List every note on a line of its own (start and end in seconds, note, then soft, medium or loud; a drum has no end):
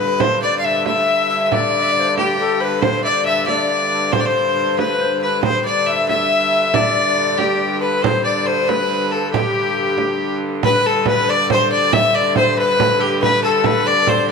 0.00 0.21 G2 medium
0.00 0.21 D3 medium
0.00 0.22 B4 medium
0.20 5.44 G2 medium
0.20 5.44 D3 medium
0.20 0.41 C5 loud
0.20 0.42 C5 medium
0.20 frame drum medium
0.42 0.58 D5 medium
0.42 0.63 D5 medium
0.42 frame drum soft
0.59 0.66 F5 medium
0.64 0.85 E5 medium
0.86 1.46 E5 loud
0.86 1.27 E5 medium
0.86 frame drum medium
1.30 1.50 E5 medium
1.46 1.54 E5 medium
1.52 2.16 D5 loud
1.52 1.57 E5 medium
1.52 frame drum medium
1.56 1.84 D5 medium
1.82 1.94 E5 medium
1.93 2.01 D5 medium
2.00 2.11 C5 medium
2.09 2.18 D5 medium
2.17 2.62 G4 medium
2.17 2.38 G4 medium
2.17 frame drum medium
2.40 2.62 A4 medium
2.60 2.83 B4 medium
2.60 2.66 C5 medium
2.65 2.82 B4 medium
2.81 3.03 C5 medium
2.81 frame drum medium
3.04 3.25 D5 medium
3.04 3.10 E5 medium
3.04 frame drum soft
3.09 3.27 D5 medium
3.25 3.46 E5 medium
3.25 3.49 E5 medium
3.47 4.13 D5 medium
3.47 3.54 E5 medium
3.47 frame drum medium
3.53 3.88 D5 medium
4.12 4.21 C5 medium
4.12 4.26 C5 medium
4.12 frame drum medium
4.20 4.27 D5 medium
4.26 4.78 C5 medium
4.26 4.80 C5 medium
4.35 frame drum soft
4.78 5.19 B4 medium
4.78 5.03 B4 medium
4.78 frame drum medium
5.00 5.25 C5 medium
5.00 frame drum soft
5.22 5.42 B4 medium
5.22 5.44 B4 medium
5.43 10.64 G2 medium
5.43 10.66 D3 medium
5.43 5.63 C5 medium
5.43 5.68 C5 medium
5.43 frame drum medium
5.65 5.88 D5 medium
5.65 frame drum soft
5.86 6.08 E5 medium
6.08 6.75 E5 loud
6.08 6.77 E5 medium
6.08 frame drum medium
6.74 7.39 D5 medium
6.74 7.40 D5 medium
6.74 frame drum medium
6.96 frame drum soft
7.38 7.80 G4 medium
7.38 7.83 G4 medium
7.38 frame drum medium
7.81 8.04 B4 medium
8.02 8.24 C5 medium
8.02 8.27 C5 medium
8.02 frame drum medium
8.24 8.47 D5 medium
8.24 8.49 D5 medium
8.24 frame drum soft
8.46 8.69 C5 medium
8.68 9.13 B4 medium
8.68 9.06 B4 medium
8.68 frame drum medium
9.11 9.32 A4 medium
9.33 10.37 G4 medium
9.33 10.38 G4 loud
9.33 frame drum medium
9.55 frame drum soft
9.78 frame drum soft
9.98 frame drum medium
10.63 14.32 G2 medium
10.63 14.32 D3 medium
10.63 10.87 B4 loud
10.63 10.84 B4 medium
10.63 frame drum medium
10.85 11.09 A4 medium
10.85 11.07 A4 medium
11.06 11.30 B4 medium
11.06 11.31 B4 medium
11.06 frame drum medium
11.28 11.52 D5 medium
11.28 11.50 D5 loud
11.28 frame drum soft
11.50 11.74 C5 medium
11.50 11.71 C5 loud
11.50 frame drum medium
11.72 11.94 D5 loud
11.72 11.94 D5 medium
11.93 12.16 E5 loud
11.93 12.18 E5 loud
11.93 frame drum medium
12.15 12.36 D5 loud
12.15 12.37 D5 medium
12.36 12.59 C5 medium
12.36 12.56 C5 loud
12.36 frame drum medium
12.57 13.01 B4 loud
12.57 13.02 B4 loud
12.57 frame drum soft
12.80 frame drum medium
13.00 13.22 G4 medium
13.00 13.20 G4 medium
13.00 13.04 A4 medium
13.21 13.27 B4 medium
13.21 13.42 B4 loud
13.21 frame drum medium
13.44 13.83 A4 medium
13.44 13.67 A4 medium
13.64 13.88 B4 loud
13.64 frame drum medium
13.86 14.26 D5 medium
13.86 14.10 D5 loud
13.86 frame drum soft
14.07 14.29 C5 loud
14.07 frame drum medium
14.28 14.32 D5 medium